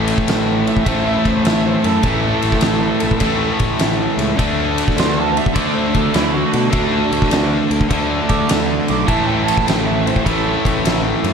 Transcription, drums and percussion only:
0.08 ride
0.18 kick
0.28 snare, ride
0.67 ride
0.77 kick
0.86 kick, ride
1.25 kick, ride
1.45 snare, ride
1.84 ride
2.03 kick, ride
2.42 ride
2.52 kick, snare
2.61 snare, ride
3.00 ride
3.11 kick
3.20 kick, ride
3.59 kick, ride
3.79 snare, ride
4.19 ride
4.39 kick, ride
4.78 ride
4.88 kick, snare
4.98 snare, ride
5.37 ride
5.46 kick
5.55 kick, ride
5.94 kick, ride
6.14 snare, ride
6.53 ride
6.73 kick, ride
7.12 ride
7.22 kick, snare
7.31 snare, ride
7.71 ride
7.81 kick
7.90 kick, ride
8.29 kick, ride
8.49 snare, ride
8.88 ride
9.08 kick, ride
9.48 ride
9.57 kick, snare
9.68 snare, ride
10.07 ride
10.16 kick
10.26 kick, ride
10.65 kick, ride
10.85 snare, ride
11.24 ride

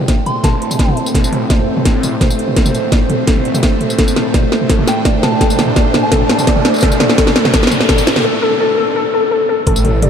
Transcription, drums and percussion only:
0.08 kick, snare, closed hi-hat
0.26 closed hi-hat, mid tom
0.44 kick, snare, closed hi-hat, mid tom
0.62 closed hi-hat
0.71 mid tom, tambourine
0.79 kick, snare, closed hi-hat
0.88 mid tom
0.97 closed hi-hat
1.06 tambourine
1.15 kick, snare, closed hi-hat, mid tom
1.24 tambourine
1.33 closed hi-hat, mid tom
1.50 kick, snare, closed hi-hat
1.59 mid tom
1.77 mid tom
1.85 kick, snare, closed hi-hat
2.03 closed hi-hat, mid tom, tambourine
2.21 kick, snare, closed hi-hat, mid tom
2.30 tambourine
2.39 closed hi-hat
2.48 mid tom
2.56 kick, snare, closed hi-hat
2.66 mid tom, tambourine
2.75 closed hi-hat, tambourine
2.92 kick, snare, closed hi-hat
3.10 closed hi-hat, mid tom
3.27 kick, snare, closed hi-hat
3.37 mid tom
3.45 closed hi-hat
3.55 mid tom, tambourine
3.63 kick, snare, closed hi-hat
3.81 closed hi-hat, mid tom
3.90 tambourine
3.99 kick, snare, closed hi-hat
4.08 tambourine
4.16 snare, closed hi-hat, mid tom
4.34 kick, snare, closed hi-hat, mid tom
4.52 snare
4.61 mid tom
4.70 kick, snare, closed hi-hat
4.79 mid tom
4.87 snare, closed hi-hat, tambourine
5.05 kick, snare, closed hi-hat, mid tom
5.23 snare, closed hi-hat, mid tom
5.41 kick, snare, closed hi-hat
5.50 mid tom, tambourine
5.53 mid tom
5.56 snare, closed hi-hat, mid tom
5.59 mid tom, tambourine
5.62 mid tom
5.65 mid tom
5.68 mid tom
5.76 kick, snare, closed hi-hat
5.94 snare, closed hi-hat, mid tom
6.12 kick, snare, closed hi-hat, mid tom
6.29 snare, closed hi-hat
6.39 mid tom, tambourine
6.47 kick, snare, closed hi-hat
6.56 mid tom
6.65 snare, closed hi-hat
6.74 tambourine
6.76 tambourine
6.78 tambourine
6.81 kick, snare, closed hi-hat, tambourine
6.87 mid tom
6.92 tambourine
7.00 snare, closed hi-hat, mid tom
7.10 snare
7.18 kick, snare, closed hi-hat
7.27 snare, mid tom
7.36 snare
7.45 snare, mid tom
7.54 kick, snare, closed hi-hat
7.63 snare
7.67 snare
7.71 closed hi-hat, mid tom, tambourine
7.81 snare
7.89 kick, snare, closed hi-hat, mid tom
7.98 tambourine
8.07 snare, closed hi-hat
8.16 snare, mid tom
9.67 kick, closed hi-hat
9.76 tambourine
9.85 closed hi-hat, mid tom
10.02 closed hi-hat, mid tom

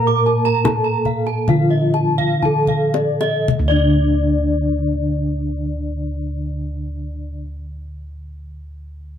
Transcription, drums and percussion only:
0.08 kendang slap
0.27 kendang slap
0.46 kendang slap
0.65 kendang high, kendang low
1.05 kendang slap, kendang low
1.26 kendang slap
1.48 kendang low
1.94 kendang slap
2.18 kendang low
2.42 kendang low
2.67 kendang low
2.94 kendang high
3.21 kendang high
3.48 kendang low

